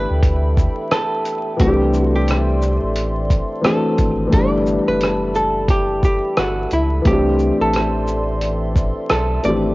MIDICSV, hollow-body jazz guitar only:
0, 0, Header, 1, 2, 480
1, 0, Start_track
1, 0, Key_signature, 1, "major"
1, 0, Tempo, 681818
1, 1124, Time_signature, 4, 2, 24, 8
1, 6861, End_track
2, 0, Start_track
2, 0, Title_t, "Hollow-body jazz guitar"
2, 0, Program_c, 0, 26
2, 0, Note_on_c, 0, 71, 105
2, 648, Note_off_c, 0, 71, 0
2, 651, Note_on_c, 0, 69, 89
2, 1133, Note_on_c, 0, 67, 83
2, 1142, Note_off_c, 0, 69, 0
2, 1421, Note_off_c, 0, 67, 0
2, 1421, Note_on_c, 0, 66, 83
2, 1509, Note_off_c, 0, 66, 0
2, 1517, Note_on_c, 0, 67, 77
2, 2444, Note_off_c, 0, 67, 0
2, 2573, Note_on_c, 0, 69, 89
2, 3049, Note_off_c, 0, 69, 0
2, 3051, Note_on_c, 0, 74, 96
2, 3405, Note_off_c, 0, 74, 0
2, 3437, Note_on_c, 0, 71, 91
2, 3771, Note_on_c, 0, 69, 91
2, 3779, Note_off_c, 0, 71, 0
2, 4013, Note_off_c, 0, 69, 0
2, 4015, Note_on_c, 0, 67, 95
2, 4250, Note_off_c, 0, 67, 0
2, 4258, Note_on_c, 0, 67, 79
2, 4498, Note_off_c, 0, 67, 0
2, 4500, Note_on_c, 0, 66, 74
2, 4739, Note_off_c, 0, 66, 0
2, 4740, Note_on_c, 0, 64, 75
2, 4978, Note_on_c, 0, 67, 82
2, 4979, Note_off_c, 0, 64, 0
2, 5329, Note_off_c, 0, 67, 0
2, 5361, Note_on_c, 0, 69, 72
2, 5806, Note_off_c, 0, 69, 0
2, 6413, Note_on_c, 0, 69, 82
2, 6632, Note_off_c, 0, 69, 0
2, 6652, Note_on_c, 0, 74, 100
2, 6861, Note_off_c, 0, 74, 0
2, 6861, End_track
0, 0, End_of_file